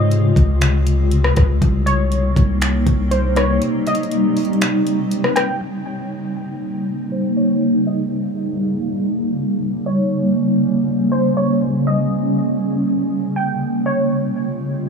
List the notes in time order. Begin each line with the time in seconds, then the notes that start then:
Already playing: G#2 C3 C#3 G#3 F4 D#5
0.11 closed hi-hat
0.36 C#2, kick, closed hi-hat
0.61 finger snap, closed hi-hat
0.87 closed hi-hat
1.11 closed hi-hat
1.24 cross-stick
1.36 C#2, kick, cross-stick, closed hi-hat
1.62 C2 C3 G3 A#3 D#4, kick, closed hi-hat
1.86 C#5, closed hi-hat
2.12 closed hi-hat
2.36 C2, kick, closed hi-hat
2.62 finger snap, closed hi-hat
2.87 C2, kick, closed hi-hat
3.11 C5, closed hi-hat
3.36 C#5, cross-stick, closed hi-hat
3.62 C4, closed hi-hat
3.87 D#5, closed hi-hat
3.95 closed hi-hat
4.03 closed hi-hat
4.12 closed hi-hat
4.37 closed hi-hat, open hi-hat
4.45 closed hi-hat
4.53 closed hi-hat
4.61 finger snap, closed hi-hat
4.87 closed hi-hat
5.11 closed hi-hat
5.24 cross-stick
5.36 G5, cross-stick, closed hi-hat
5.62 C#3 G3 A#3 D#4
5.87 C#5
7.12 C5
7.37 C#5
7.87 D#5
9.62 C#4
9.86 C#5
11.12 C5
11.37 C#5
11.87 D#5
13.36 G5
13.61 C3 C#3 G#3 F4
13.86 C#5